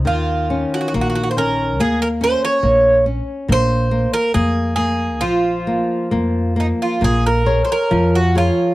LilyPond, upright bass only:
\new Staff \with { instrumentName = "Upright bass" } { \clef bass \time 2/4 \key bes \minor \tempo 4 = 68 ees,4 bes,,4 | ees,4 bes,,4 | bes,,4 f,4 | bes,,4 f,4 |
bes,,4 f,4 | }